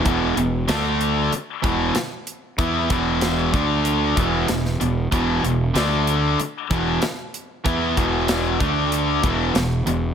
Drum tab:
HH |x-x-x-x-x-x-x-x-|x-x-x-x-x-x-x-x-|x-x-x-x-x-x-x-x-|x-x-x-x-x-x-x-x-|
SD |----o-------o---|----o-------oo--|----o-------o---|----o-------o---|
BD |o---------o-----|o-o---o---o-----|o---------o-----|o-o---o---o-----|